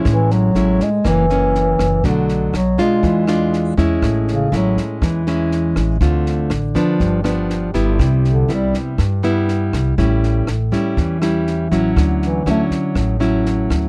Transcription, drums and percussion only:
0.05 kick, cross-stick, snare
0.30 snare
0.55 snare
0.80 kick, snare
1.05 kick, cross-stick, snare
1.30 snare
1.55 snare
1.79 kick, cross-stick, snare
2.04 kick, snare
2.29 snare
2.54 cross-stick, snare
2.78 kick, snare
3.03 kick, snare
3.27 cross-stick, snare
3.53 snare
3.78 kick, snare
4.02 kick, cross-stick, snare
4.28 snare
4.52 snare
4.77 kick, snare
5.02 kick, cross-stick, snare
5.27 snare
5.51 snare
5.76 kick, cross-stick, snare
6.00 kick, snare
6.26 snare
6.50 cross-stick, snare
6.75 kick, snare
7.00 kick, snare
7.25 cross-stick, snare
7.50 snare
7.74 kick, snare
7.99 kick, cross-stick, snare
8.24 snare
8.49 snare
8.74 kick, snare
8.98 kick, cross-stick, snare
9.23 snare
9.48 snare
9.73 kick, cross-stick, snare
9.98 kick, snare
10.23 snare
10.47 cross-stick, snare
10.72 kick, snare
10.97 kick, snare
11.22 cross-stick, snare
11.47 snare
11.72 kick, snare
11.96 kick, cross-stick, snare
12.22 snare
12.46 snare
12.71 kick, snare
12.95 kick, cross-stick, snare
13.21 snare
13.46 snare
13.70 kick, cross-stick, snare

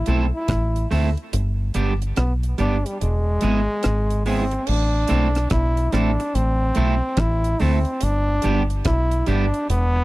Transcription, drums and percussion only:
0.06 closed hi-hat
0.48 kick, cross-stick, closed hi-hat
0.76 closed hi-hat
0.91 open hi-hat
1.17 closed hi-hat
1.33 closed hi-hat
1.74 closed hi-hat
2.02 closed hi-hat
2.16 cross-stick, closed hi-hat
2.43 closed hi-hat
2.58 closed hi-hat
2.86 closed hi-hat
3.01 closed hi-hat
3.41 closed hi-hat
3.83 cross-stick, closed hi-hat
4.10 closed hi-hat
4.26 open hi-hat
4.51 closed hi-hat
4.67 crash
5.08 closed hi-hat
5.35 cross-stick, closed hi-hat
5.50 kick, cross-stick, closed hi-hat
5.77 closed hi-hat
5.92 cross-stick, closed hi-hat
6.20 closed hi-hat
6.35 closed hi-hat
6.75 closed hi-hat
7.17 kick, cross-stick, closed hi-hat
7.44 closed hi-hat
7.60 open hi-hat
7.85 closed hi-hat
8.01 closed hi-hat
8.42 closed hi-hat
8.70 closed hi-hat
8.85 kick, cross-stick, closed hi-hat
9.11 closed hi-hat
9.26 closed hi-hat
9.54 closed hi-hat
9.70 closed hi-hat

